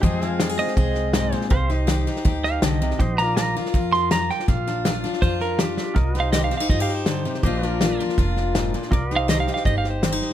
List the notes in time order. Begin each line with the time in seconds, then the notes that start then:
0.02 F2 F3 G#3 C4 G4 C5 D#5, kick, snare
0.06 G#4
0.21 C4 G#4, snare
0.29 F5
0.40 F3 F4, snare, hi-hat pedal
0.49 G#4
0.58 C4 D#5, snare
0.68 snare
0.76 C2 C3 G#4 D#5, kick, snare
0.95 snare
1.13 G#2 D#5, snare, hi-hat pedal
1.32 A#2 C5, snare
1.41 snare
1.50 C2 C3 G4 C5 F5, kick, snare
1.69 D#4, snare
1.78 D#5
1.87 D#3 G4, snare, hi-hat pedal
2.07 D#4, snare
2.16 snare
2.25 D2 G2 G4, kick, snare
2.44 F5, snare
2.62 C2 D3 D#5, snare, hi-hat pedal
2.81 C3, snare
2.91 snare
2.99 A#1 A#2 G4 C5 D#5, kick, snare
3.18 F4 D5 A#5, snare
3.24 F4 A#4
3.37 F3 F4 A#5, snare, hi-hat pedal
3.56 F4, snare
3.66 snare
3.74 F2 F4, kick, snare
3.92 C6, snare
4.11 F3 F4 A#5, snare, hi-hat pedal
4.30 G5, snare
4.40 snare
4.48 A#1 A#2 F5, kick, snare
4.67 D4, snare
4.85 F3 F4, snare, hi-hat pedal
5.04 D4, snare
5.13 snare
5.22 F2 F4 C5, kick, snare
5.40 A#4, snare
5.59 F3 D4 G4, snare, hi-hat pedal
5.77 G4, snare
5.95 C2 C3 F4 A#4 D#5, kick, snare
6.14 D#4, snare
6.20 G4 C5 F5
6.32 D#3 G4 D#5, snare, hi-hat pedal
6.44 F5
6.51 C4, snare
6.57 D#4 F5, snare
6.69 G2 F4 D#5, kick, snare
6.80 G4 F5
6.88 snare
6.95 C5
7.06 D3, snare, hi-hat pedal
7.25 C3, snare
7.34 snare
7.43 A#1 A#2 F3 A#3 D4 F4 G4 C5 D#5, kick, snare
7.62 D4 D5, snare
7.68 F4 A#4
7.81 F3 F4, snare, hi-hat pedal
8.00 D4, snare
8.09 snare
8.18 F1 F2 F4, kick, snare
8.37 snare
8.55 G#2, snare, hi-hat pedal
8.74 A#2, snare
8.82 snare
8.91 C2 C3 F4 A#4 D5, kick, snare
9.11 D#4 D#5, snare
9.16 G4 C5 F5
9.28 D#3 G4 D#5, snare, hi-hat pedal
9.40 F5
9.47 D#4, snare
9.54 F5, snare
9.65 G1 G2 G4 D#5, kick, snare
9.78 F5
9.84 snare
9.90 C5
10.03 D#3 C4, snare, hi-hat pedal
10.12 D#4
10.21 snare